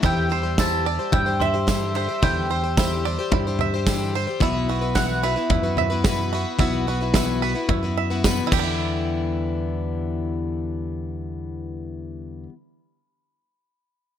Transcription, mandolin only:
0.06 0.59 G5 medium
0.60 1.13 A5 loud
1.13 1.41 G5 loud
1.42 1.94 E5 loud
1.95 2.20 E5 medium
2.23 3.01 G5 medium
4.43 4.98 E5 loud
4.95 5.21 F#5 loud
5.24 8.21 E5 loud

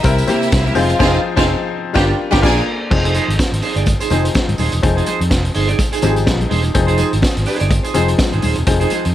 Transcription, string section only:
0.04 0.75 E4 medium
0.04 0.75 E5 medium
0.76 0.98 F4 medium
0.76 0.98 F5 medium
0.99 1.16 F4 loud
0.99 1.16 F5 medium
1.36 1.53 F4 medium
1.36 1.53 F5 loud
1.95 2.12 G4 medium
1.95 2.12 G5 medium
2.31 2.41 G4 loud
2.31 2.41 G5 loud
2.43 2.60 G#4 loud
2.43 2.60 G#5 loud

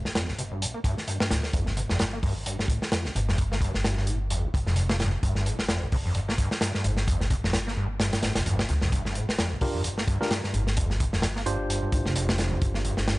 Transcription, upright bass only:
0.05 0.61 G1 medium
0.61 0.70 A#1 medium
1.31 1.47 D2 medium
1.53 1.83 G1 medium
1.90 2.75 G1 medium
3.15 3.67 G1 medium
3.74 4.48 G1 medium
4.54 4.62 G1 medium
4.67 5.18 F1 medium
5.23 5.52 G1 medium
5.59 6.44 G1 medium
6.85 7.37 G1 medium
7.44 8.18 G1 medium
8.23 8.32 G1 medium
8.36 8.45 F1 medium
8.46 8.62 G1 medium
8.69 8.78 D2 loud
8.82 8.89 C2 medium
8.92 9.21 G1 loud
9.28 10.14 G1 medium
10.54 11.06 G1 loud
11.13 11.87 G1 medium
11.92 12.01 G1 medium
12.05 12.56 F1 medium
12.62 12.91 G1 loud
12.97 13.19 G1 medium

